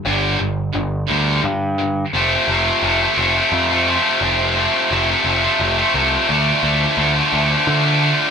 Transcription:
X:1
M:3/4
L:1/16
Q:1/4=87
K:F
V:1 name="Distorted electric guitar" clef=bass
[G,,D,G,]2 [G,,D,]2 [G,,D,]2 [G,,D,G,]2 [G,,D,]2 [G,,D,]2 | [F,,C,F,A,C]2 [C,F,A,C]2 [F,,C,F,A,C] [F,A,C] [C,F,A,C] [F,A,C]2 [F,A,C] [C,F,A,C]2 | [F,,C,F,A,C]2 [C,F,A,C]2 [F,,C,F,A,C] [F,A,C] [C,F,A,C] [F,A,C]2 [F,A,C] [C,F,A,C]2 | [D,F,A,D]2 [D,F,A,D]2 [D,F,A,D] [F,A,D] [D,F,A,D] [F,A,D]2 [F,A,D] [D,F,A,D]2 |]
V:2 name="Picked electric bass" clef=bass
G,,,2 G,,,2 G,,,2 D,,2 G,,4 | F,,,2 F,,,2 F,,,2 F,,,2 F,,4 | F,,,4 F,,,2 F,,,2 F,,,2 C,,2 | D,,2 D,,2 D,,2 D,,2 D,4 |]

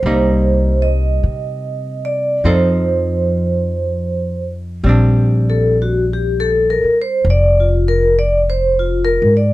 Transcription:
X:1
M:4/4
L:1/16
Q:"Swing" 1/4=50
K:Bb
V:1 name="Vibraphone"
c2 e4 d2 c6 z2 | z2 A _G =G A B c d F B d c F B d |]
V:2 name="Hollow-body jazz guitar"
[G,B,E]8 [F,CEA]8 | [G,CD]16 |]
V:3 name="Upright bass" clef=bass
C,,4 C,4 F,,8 | B,,,6 z2 F,,,6 _A,,2 |]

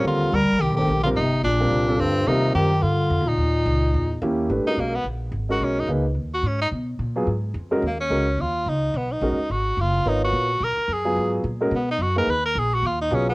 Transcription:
X:1
M:4/4
L:1/8
Q:"Swing" 1/4=216
K:Cphr
V:1 name="Grand piano"
[G,CFB]2 z3 [=A,=DGc] z [G,CFB] | z3 [G,CFB]2 [G,CF=A]3 | [G,CFB]3 z4 z | z6 [B,D_FG]2 |
[K:G#dor] [=A,=D=GB] [^G,CF^A]2 z4 [G,CFA]- | [G,CFA]2 [A,DGB] z4 z | z3 [F,B,EG] z3 [G,CFA] | z2 [G,CFA] z4 z |
z2 [G,CFA] z4 z | [B,EAc]3 z4 [F,B,EG]- | [F,B,EG]2 z [G,CFA] z3 [A,DGB] | z6 [F,B,EG]2 |]
V:2 name="Tenor saxophone"
F2 B2 G G2 F | E2 =D4 C2 | E2 G2 F3 E- | E6 z2 |
[K:G#dor] z D A, B, z3 F | C D z3 F C D | z8 | A, C3 E2 D2 |
B, D3 F2 E2 | D F3 A2 G2- | G z3 B, D F A | B A G F E D C B, |]
V:3 name="Bass clarinet" clef=bass
=D,2 G,2 E, E,2 D, | C,2 B,,4 G,,2 | C,2 E,2 =D,3 B,,- | B,,6 z2 |
[K:G#dor] z8 | z8 | z8 | z8 |
z8 | z8 | z8 | z8 |]
V:4 name="Upright bass" clef=bass
E,,2 (3=D,, C,, B,,, (3C,, B,,, G,,, B,,,2 | G,,,2 B,,,2 C,,2 =D,,2 | E,,2 _G,,2 =G,,2 (3F,, E,, C,, | E,,2 D,,2 _F,,2 E,,2 |
[K:G#dor] G,,, z B,,,2 A,,,2 G,,,2 | B,,,2 C,,2 D,,2 G,,2 | B,,2 A,,2 G,,2 E,,2 | D,,2 C,,2 D,,2 C,,2 |
B,,,2 A,,, z G,,,2 F,,,2 | G,,,2 A,,,2 B,,, z F,,2 | G,,2 A,,2 B,,2 F,,2 | D,,2 A,,,2 D,,2 B,,,2 |]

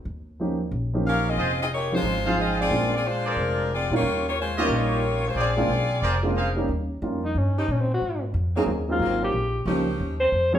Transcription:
X:1
M:4/4
L:1/8
Q:"Swing" 1/4=181
K:Ebmix
V:1 name="Trumpet section"
z8 | [FAce] z4 [FAcf]3 | z3 [ABc=d]3 z2 | z3 [FGde]3 z2 |
[ABc=d] z3 [ABcd] z [ABcf] z | z8 | z8 | z8 |]
V:2 name="Saxophone section"
z6 [DGBf] [CFAe]- | [CFAe] [CFAe] [B,EGd] [A,EFc]3 [CFAe] [CFA=d]- | [CFA=d] [CFAd] [A,=DFc] [A,DFB]3 [CFAd] [B,FG_d]- | [B,FGd] [B,FGd] [A,DFc] [G,DFB] [B,FGd]3 [A,DFc] |
[CFA=d]6 z2 | z8 | z8 | z8 |]
V:3 name="Alto saxophone"
z8 | z8 | z8 | z8 |
z8 | z3 E D E (3D C _G- | _G z4 F2 =G- | G2 z3 c2 d |]
V:4 name="Saxophone section"
z8 | z8 | z8 | z8 |
z8 | z4 z [F,DEG] z2 | z3 [_G,B,CA] z2 [G,B,CA] z | z2 [F,DEG]3 z3 |]
V:5 name="Grand piano"
z2 [F,B,DEG] z2 [F,B,DEG]3 | z3 [F,A,CEG] z [F,A,CEF]3 | [A,B,C=DF] z6 [G,B,_DEF] | z3 [G,B,DEF]3 z2 |
z [A,B,C=DF] z3 [A,B,CDF] z [G,B,_DEG] | z2 [G,B,DEF] z4 z | z3 [_G,B,CEA] z [G,B,CEA]3 | z2 [F,B,DEG] z4 [F,B,CDA] |]
V:6 name="Upright bass" clef=bass
E,,4 B,,,4 | F,,,4 A,,,4 | B,,,4 F,,,3 B,, | E,,4 B,,,4 |
B,,,2 _C,,2 F,,,4 | E,,2 F,,2 G,,2 B,,2 | A,,2 F,,2 E,,2 A,,,2 | B,,,2 D,,2 E,,2 F,,2 |]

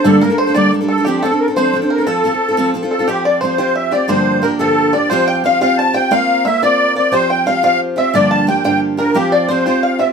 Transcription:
X:1
M:6/8
L:1/16
Q:3/8=118
K:F
V:1 name="Accordion"
A2 B2 c2 d2 z2 A2 | G2 A2 B2 c3- c/2 c/2 B2 | A8 z2 A2 | G2 d2 c2 c2 e2 d2 |
c4 B2 A4 d2 | c2 g2 f2 f2 a2 g2 | f4 e2 d4 d2 | c2 g2 f2 f2 z2 e2 |
d2 a2 g2 g2 z2 B2 | G2 d2 c2 c2 f2 e2 |]
V:2 name="Five-string banjo"
A2 B2 c2 d2 z2 A2 | G2 A4 c4 B2 | A8 z2 A2 | G2 d2 c2 c2 e2 d2 |
c4 B2 A4 d2 | c2 g2 f2 f2 a2 g2 | f4 e2 d4 d2 | c2 g2 f2 f2 z2 e2 |
d2 a2 g2 g2 z2 B2 | G2 d2 c2 c2 f2 e2 |]
V:3 name="Steel-string acoustic guitar"
[G,,D,G,B,DA]2 [G,B,DA] [G,B,DA]2 [G,B,DA] [G,,D,G,B,DA]2 [G,B,DA] [G,B,DA]2 [G,B,DA] | [F,CDA]2 [F,CDA] [CDA]2 [CDA] [F,CDA]2 [F,CDA] [CDA]2 [CDA] | [F,CFA]2 [F,CFA] [CFA]2 [CFA] [F,CFA]2 [F,CFA] [CFA]2 [CFA] | [F,CFG]4 [F,CFG]2 [F,CFG]4 [CFG]2 |
[G,,D,F,B,DG]4 [F,B,DG]2 [G,,D,F,B,DG]4 [F,B,DG]2 | [F,CFG]4 [F,CFG]2 [F,CFG]4 [CFG]2 | [B,CFB]4 [B,CFB]2 [B,CFB]4 [CFB]2 | [F,CFG]4 [F,CFG]2 [F,CFG]4 [CFG]2 |
[G,,D,F,B,DG]4 [F,B,DG]2 [G,,D,F,B,DG]4 [F,B,DG]2 | [F,CFG]4 [F,CFG]2 [F,CFG]4 [CFG]2 |]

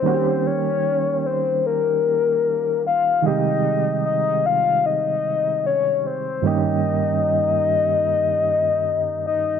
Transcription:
X:1
M:4/4
L:1/8
Q:1/4=75
K:Ebmix
V:1 name="Soft synth lead"
c d2 c B3 f | e2 e f e2 d c | e6- e e |]
V:2 name="Synth keys" clef=bass
[E,G,B,D_G=G]8 | [C,E,G,A,G]8 | [G,,E,G,B,DG]8 |]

